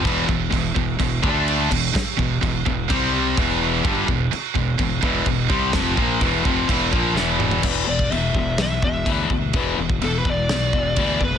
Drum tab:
CC |x---x---x---x-x-|----x---x---x---|x---x---x---x---|x---x---x-------|
SD |----------------|o---------------|----------------|o-----------o---|
T2 |----------------|----------------|----------------|--------------o-|
FT |----------------|----------------|----------------|---------------o|
BD |o-o-o-o-o-o---o-|o-o-o-o-o---o---|o-o---o-o-o-o-o-|o-o-o-o-o-o-----|

CC |x---x---x---x---|x---x---x---x---|
SD |--------o-------|--------o-------|
T2 |----------------|----------------|
FT |----------------|----------------|
BD |o--o--o---o-o-o-|o--o--o---o-o-o-|